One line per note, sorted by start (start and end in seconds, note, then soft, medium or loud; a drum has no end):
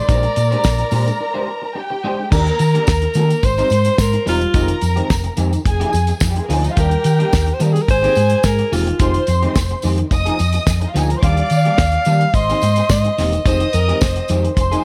0.00 1.73 D5 loud
0.08 0.26 A#1 medium
0.08 0.29 G#3 medium
0.08 0.22 D4 medium
0.08 0.22 G4 medium
0.08 1.73 A#4 medium
0.08 0.22 C5 medium
0.08 1.73 A#5 medium
0.08 kick loud
0.08 closed hi-hat medium
0.08 tambourine medium
0.23 muted clean electric guitar stroke medium
0.23 closed hi-hat soft
0.36 0.54 A#2 medium
0.36 muted clean electric guitar stroke soft
0.36 closed hi-hat medium
0.36 tambourine medium
0.51 0.63 G#3 medium
0.51 0.64 D4 medium
0.51 0.64 G4 medium
0.51 0.64 C5 medium
0.51 closed hi-hat soft
0.64 0.82 A#1 medium
0.64 muted clean electric guitar stroke soft
0.64 kick loud
0.64 snare loud
0.64 tambourine medium
0.78 muted clean electric guitar stroke soft
0.78 closed hi-hat soft
0.91 1.09 A#2 loud
0.91 1.13 G#3 medium
0.91 1.07 D4 medium
0.91 1.06 G4 medium
0.91 1.06 C5 medium
0.91 open hi-hat medium
0.91 tambourine medium
1.07 muted clean electric guitar stroke soft
1.07 closed hi-hat soft
1.07 tambourine soft
1.20 muted clean electric guitar stroke soft
1.34 1.46 G#3 medium
1.34 1.47 D4 medium
1.34 1.47 G4 medium
1.34 1.47 C5 medium
1.47 muted clean electric guitar stroke soft
1.62 muted clean electric guitar stroke soft
1.75 2.31 G4 medium
1.75 2.31 G5 medium
1.75 muted clean electric guitar stroke soft
1.90 muted clean electric guitar stroke soft
2.04 2.24 G#3 medium
2.04 2.19 D4 loud
2.04 2.18 G4 loud
2.04 2.18 C5 medium
2.19 muted clean electric guitar stroke medium
2.31 2.49 D#2 medium
2.31 2.52 A#3 medium
2.31 2.46 D4 medium
2.31 2.46 G4 medium
2.31 3.13 A#4 medium
2.31 2.45 A#4 medium
2.31 3.47 A#4 loud
2.31 3.13 A#5 medium
2.31 kick loud
2.31 crash loud
2.31 tambourine medium
2.46 muted clean electric guitar stroke soft
2.46 closed hi-hat soft
2.59 2.77 D#3 medium
2.59 muted clean electric guitar stroke soft
2.59 closed hi-hat medium
2.59 tambourine medium
2.74 2.86 A#3 soft
2.74 2.86 D4 medium
2.74 2.86 G4 medium
2.74 2.87 A#4 medium
2.74 closed hi-hat soft
2.87 3.05 D#2 medium
2.87 muted clean electric guitar stroke soft
2.87 kick loud
2.87 snare loud
2.87 tambourine medium
3.02 muted clean electric guitar stroke soft
3.02 closed hi-hat soft
3.14 3.33 D#3 loud
3.14 3.36 A#3 loud
3.14 3.30 D4 medium
3.14 3.30 G4 medium
3.14 3.29 A#4 medium
3.14 closed hi-hat medium
3.14 tambourine soft
3.30 muted clean electric guitar stroke medium
3.30 closed hi-hat soft
3.30 tambourine soft
3.43 3.61 G#1 medium
3.43 4.25 C5 medium
3.43 4.02 C5 loud
3.43 4.25 C6 loud
3.43 muted clean electric guitar stroke soft
3.43 kick loud
3.43 closed hi-hat medium
3.43 tambourine soft
3.58 3.70 G3 medium
3.58 3.70 C4 medium
3.58 3.71 D#4 medium
3.58 3.71 A#4 medium
3.58 closed hi-hat medium
3.58 tambourine soft
3.70 3.88 G#2 medium
3.70 muted clean electric guitar stroke soft
3.70 closed hi-hat medium
3.70 tambourine medium
3.85 muted clean electric guitar stroke medium
3.85 closed hi-hat medium
3.85 tambourine soft
3.98 4.16 G#2 loud
3.98 4.28 A#4 loud
3.98 kick loud
3.98 snare loud
3.98 tambourine loud
4.13 muted clean electric guitar stroke medium
4.13 closed hi-hat soft
4.26 4.44 E1 medium
4.26 4.47 G3 loud
4.26 4.41 C4 loud
4.26 4.40 D#4 loud
4.26 4.79 F4 medium
4.26 4.39 A#4 loud
4.26 snare soft
4.26 open hi-hat medium
4.26 tambourine medium
4.41 muted clean electric guitar stroke soft
4.41 closed hi-hat medium
4.54 4.72 F1 loud
4.54 4.75 D#3 medium
4.54 4.69 G#3 medium
4.54 4.68 C4 medium
4.54 4.68 G4 medium
4.54 5.37 A#4 medium
4.54 5.37 A#5 medium
4.54 kick loud
4.54 closed hi-hat medium
4.54 tambourine medium
4.68 muted clean electric guitar stroke medium
4.68 closed hi-hat medium
4.81 5.00 F2 medium
4.81 muted clean electric guitar stroke soft
4.81 closed hi-hat medium
4.81 tambourine medium
4.96 5.08 D#3 medium
4.96 5.08 G#3 medium
4.96 5.09 C4 medium
4.96 5.09 G4 medium
4.96 closed hi-hat soft
5.09 5.28 F1 medium
5.09 muted clean electric guitar stroke medium
5.09 kick loud
5.09 snare loud
5.09 tambourine medium
5.24 muted clean electric guitar stroke medium
5.24 closed hi-hat soft
5.37 5.55 F2 medium
5.37 5.58 D#3 medium
5.37 5.52 G#3 loud
5.37 5.51 C4 loud
5.37 5.51 G4 medium
5.37 closed hi-hat medium
5.37 tambourine medium
5.52 muted clean electric guitar stroke soft
5.52 closed hi-hat soft
5.52 tambourine soft
5.65 5.83 F1 loud
5.65 6.22 G#4 medium
5.65 6.22 G#5 medium
5.65 muted clean electric guitar stroke soft
5.65 kick loud
5.65 closed hi-hat medium
5.65 tambourine soft
5.80 5.92 F3 medium
5.80 5.93 A#3 medium
5.80 5.93 D#4 medium
5.80 5.93 G#4 medium
5.80 closed hi-hat medium
5.93 6.11 F2 loud
5.93 muted clean electric guitar stroke soft
5.93 closed hi-hat medium
5.93 tambourine soft
6.07 muted clean electric guitar stroke medium
6.07 closed hi-hat medium
6.07 tambourine soft
6.20 6.39 F2 loud
6.20 muted clean electric guitar stroke soft
6.20 kick loud
6.20 snare loud
6.20 tambourine loud
6.29 6.36 G3 medium
6.29 6.36 G4 medium
6.36 6.43 G#3 medium
6.36 6.43 G#4 medium
6.36 muted clean electric guitar stroke soft
6.36 closed hi-hat soft
6.44 6.50 A#3 medium
6.44 6.50 A#4 medium
6.49 6.67 D2 loud
6.49 6.70 F3 medium
6.49 6.64 A#3 medium
6.49 6.57 C4 medium
6.49 6.63 D#4 medium
6.49 6.63 G#4 loud
6.49 6.57 C5 medium
6.49 snare soft
6.49 open hi-hat medium
6.49 tambourine medium
6.57 6.64 D4 medium
6.57 6.64 D5 medium
6.64 6.71 D#4 medium
6.64 6.71 D#5 medium
6.64 muted clean electric guitar stroke medium
6.64 closed hi-hat soft
6.64 tambourine soft
6.71 6.77 F4 medium
6.71 6.77 F5 loud
6.76 6.94 D#2 loud
6.76 6.97 G3 medium
6.76 6.91 A#3 loud
6.76 6.91 D4 medium
6.76 7.59 G4 medium
6.76 6.90 G4 medium
6.76 7.55 A#4 loud
6.76 7.59 G5 medium
6.76 kick loud
6.76 closed hi-hat medium
6.76 tambourine medium
6.91 muted clean electric guitar stroke medium
6.91 closed hi-hat soft
7.04 7.22 D#3 loud
7.04 muted clean electric guitar stroke soft
7.04 closed hi-hat medium
7.04 tambourine medium
7.19 7.31 G3 soft
7.19 7.31 A#3 medium
7.19 7.32 D4 medium
7.19 7.32 G4 medium
7.19 closed hi-hat soft
7.32 7.51 D#2 medium
7.32 muted clean electric guitar stroke soft
7.32 kick loud
7.32 snare loud
7.32 tambourine medium
7.47 muted clean electric guitar stroke soft
7.47 closed hi-hat soft
7.54 7.64 C5 medium
7.60 7.78 D#3 loud
7.60 7.81 G3 medium
7.60 7.75 A#3 medium
7.60 7.74 D4 medium
7.60 7.74 G4 medium
7.60 7.74 A#4 medium
7.60 closed hi-hat medium
7.60 tambourine medium
7.73 7.83 G#4 medium
7.73 muted clean electric guitar stroke medium
7.73 closed hi-hat soft
7.73 tambourine soft
7.82 7.89 A#4 medium
7.88 8.06 G#1 loud
7.88 8.71 G#4 medium
7.88 8.47 C5 loud
7.88 8.71 G#5 medium
7.88 muted clean electric guitar stroke soft
7.88 kick loud
7.88 closed hi-hat medium
7.88 tambourine soft
8.03 8.15 D#3 medium
8.03 8.15 A#3 medium
8.03 8.16 C4 medium
8.03 8.16 G4 medium
8.03 closed hi-hat soft
8.03 tambourine soft
8.15 8.34 G#2 loud
8.15 muted clean electric guitar stroke soft
8.15 closed hi-hat medium
8.15 tambourine medium
8.30 muted clean electric guitar stroke medium
8.30 closed hi-hat medium
8.43 8.62 G#2 loud
8.43 8.75 A#4 loud
8.43 kick loud
8.43 snare loud
8.43 tambourine loud
8.58 muted clean electric guitar stroke soft
8.58 closed hi-hat soft
8.72 8.90 E1 medium
8.72 8.93 D#3 medium
8.72 8.87 A#3 loud
8.72 8.87 C4 medium
8.72 9.28 F4 medium
8.72 8.86 G4 loud
8.72 open hi-hat medium
8.72 tambourine medium
8.87 muted clean electric guitar stroke soft
8.87 closed hi-hat medium
8.99 9.17 F1 loud
8.99 9.21 D#3 medium
8.99 9.15 G#3 medium
8.99 9.14 C4 medium
8.99 9.13 G4 medium
8.99 9.82 C5 medium
8.99 9.82 C6 loud
8.99 kick loud
8.99 closed hi-hat medium
8.99 tambourine medium
9.14 muted clean electric guitar stroke soft
9.14 closed hi-hat soft
9.27 9.45 F2 loud
9.27 muted clean electric guitar stroke soft
9.27 closed hi-hat medium
9.27 tambourine medium
9.42 9.55 D#3 medium
9.42 9.55 G#3 medium
9.42 9.55 C4 medium
9.42 9.56 G4 medium
9.42 closed hi-hat soft
9.55 9.73 F1 medium
9.55 muted clean electric guitar stroke soft
9.55 kick loud
9.55 snare loud
9.55 tambourine medium
9.69 muted clean electric guitar stroke soft
9.69 closed hi-hat soft
9.82 10.01 F2 medium
9.82 10.04 D#3 medium
9.82 9.99 G#3 medium
9.82 9.98 C4 medium
9.82 9.97 G4 medium
9.82 open hi-hat medium
9.82 tambourine medium
9.98 muted clean electric guitar stroke soft
9.98 closed hi-hat soft
10.10 10.29 F1 loud
10.10 10.75 D#5 medium
10.10 10.74 D#6 loud
10.10 muted clean electric guitar stroke soft
10.10 kick loud
10.10 closed hi-hat medium
10.10 tambourine soft
10.25 10.37 F3 medium
10.25 10.38 A#3 medium
10.25 10.38 D#4 medium
10.25 10.39 G#4 medium
10.25 closed hi-hat soft
10.39 10.57 F2 medium
10.39 muted clean electric guitar stroke soft
10.39 closed hi-hat medium
10.39 tambourine soft
10.53 muted clean electric guitar stroke medium
10.53 closed hi-hat medium
10.53 tambourine soft
10.67 10.84 F2 medium
10.67 muted clean electric guitar stroke soft
10.67 kick loud
10.67 snare loud
10.67 tambourine loud
10.81 10.89 D#4 medium
10.81 10.88 D#5 medium
10.81 muted clean electric guitar stroke soft
10.81 closed hi-hat soft
10.88 10.95 F4 medium
10.88 10.95 F5 medium
10.94 11.13 D2 medium
10.94 11.15 F3 medium
10.94 11.09 A#3 medium
10.94 11.09 D#4 medium
10.94 11.03 G4 medium
10.94 11.08 G#4 medium
10.94 11.03 G5 medium
10.94 snare soft
10.94 closed hi-hat medium
10.94 tambourine medium
11.02 11.10 G#4 medium
11.02 11.10 G#5 medium
11.09 11.16 A#4 medium
11.09 11.16 A#5 medium
11.09 muted clean electric guitar stroke soft
11.09 closed hi-hat medium
11.17 11.23 C5 medium
11.17 11.23 C6 medium
11.22 11.40 D#2 loud
11.22 11.43 G3 medium
11.22 11.37 A#3 medium
11.22 11.37 D4 medium
11.22 11.36 G4 medium
11.22 12.05 D5 medium
11.22 12.36 F5 loud
11.22 12.05 D6 medium
11.22 kick loud
11.22 closed hi-hat medium
11.22 tambourine medium
11.37 muted clean electric guitar stroke medium
11.37 closed hi-hat soft
11.50 11.68 D#3 medium
11.50 muted clean electric guitar stroke soft
11.50 closed hi-hat medium
11.50 tambourine medium
11.65 11.77 G3 medium
11.65 11.78 A#3 medium
11.65 11.78 D4 medium
11.65 11.79 G4 medium
11.65 closed hi-hat soft
11.78 11.96 D#2 medium
11.78 muted clean electric guitar stroke soft
11.78 kick loud
11.78 snare loud
11.78 tambourine medium
11.92 muted clean electric guitar stroke soft
11.92 closed hi-hat soft
12.05 12.24 D#3 loud
12.05 12.27 G3 medium
12.05 12.21 A#3 medium
12.05 12.21 D4 loud
12.05 12.20 G4 medium
12.05 closed hi-hat medium
12.05 tambourine medium
12.21 muted clean electric guitar stroke soft
12.21 closed hi-hat soft
12.34 12.51 G#1 loud
12.34 13.16 C5 medium
12.34 12.90 D#5 loud
12.34 13.16 C6 loud
12.34 muted clean electric guitar stroke soft
12.34 kick loud
12.34 closed hi-hat medium
12.34 tambourine soft
12.49 12.62 D#3 medium
12.49 12.62 A#3 medium
12.49 12.62 C4 medium
12.49 12.63 G4 medium
12.49 closed hi-hat soft
12.49 tambourine soft
12.61 12.80 G#2 loud
12.61 muted clean electric guitar stroke soft
12.61 closed hi-hat medium
12.61 tambourine medium
12.76 muted clean electric guitar stroke medium
12.76 closed hi-hat medium
12.76 tambourine soft
12.89 13.07 G#2 loud
12.89 13.48 D#5 loud
12.89 kick loud
12.89 snare loud
12.89 tambourine loud
13.04 muted clean electric guitar stroke medium
13.04 closed hi-hat soft
13.18 13.36 E1 medium
13.18 13.39 D#3 medium
13.18 13.33 A#3 loud
13.18 13.33 C4 medium
13.18 13.32 G4 loud
13.18 snare soft
13.18 open hi-hat medium
13.18 tambourine medium
13.32 muted clean electric guitar stroke soft
13.32 closed hi-hat soft
13.32 tambourine soft
13.45 13.63 F1 loud
13.45 13.66 D#3 medium
13.45 13.61 G#3 medium
13.45 13.61 C4 medium
13.45 13.60 G4 medium
13.45 13.75 C5 medium
13.45 14.27 D#5 medium
13.45 14.27 D#6 medium
13.45 kick loud
13.45 closed hi-hat medium
13.45 tambourine medium
13.60 muted clean electric guitar stroke medium
13.60 closed hi-hat soft
13.73 13.91 F2 loud
13.73 14.04 A#4 medium
13.73 muted clean electric guitar stroke soft
13.73 closed hi-hat medium
13.73 tambourine medium
13.88 14.00 D#3 medium
13.88 14.01 G#3 medium
13.88 14.01 C4 medium
13.88 14.02 G4 medium
13.88 closed hi-hat soft
14.01 14.19 F1 medium
14.01 14.57 C5 medium
14.01 muted clean electric guitar stroke soft
14.01 kick loud
14.01 snare loud
14.01 tambourine medium
14.16 muted clean electric guitar stroke soft
14.16 closed hi-hat soft
14.28 14.47 F2 medium
14.28 14.50 D#3 medium
14.28 14.45 G#3 loud
14.28 14.44 C4 loud
14.28 14.44 G4 medium
14.28 closed hi-hat medium
14.28 tambourine medium
14.45 muted clean electric guitar stroke medium
14.45 closed hi-hat soft
14.57 14.74 F1 loud
14.57 14.84 C5 medium
14.57 14.84 C6 medium
14.57 muted clean electric guitar stroke soft
14.57 kick loud
14.57 closed hi-hat medium
14.57 tambourine soft
14.72 14.84 F3 medium
14.72 14.84 A#3 medium
14.72 14.84 D#4 medium
14.72 14.84 G#4 medium
14.72 closed hi-hat soft
14.72 tambourine soft